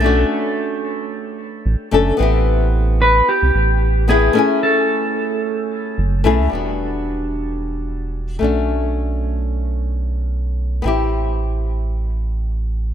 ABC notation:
X:1
M:4/4
L:1/16
Q:"Swing 16ths" 1/4=111
K:Edor
V:1 name="Clean electric guitar"
A2 z12 z2 | z6 B2 G6 ^G2- | ^G2 A12 z2 | z16 |
z16 | z16 |]
V:2 name="Nylon-string guitar"
[A,CDF]12- [A,CDF]2 [A,CDA]2 | [B,=CEG]12- [B,CEG]2 [B,CEB]2 | [A,CE^g]12- [A,CEg]2 [A,CE^G]2 | [G,B,DF]12- [G,B,DF]2 [A,CDF]2- |
[A,CDF]16 | [B,=CEG]16 |]
V:3 name="Analog synth bass" clef=bass
B,,,2 z8 z2 A,,, z F,,, z | A,,,8 z =C,, A,,,6 | z12 F,,,2 B,,, C,, | E,,,12- E,,,2 B,,,2- |
B,,,16 | A,,,16 |]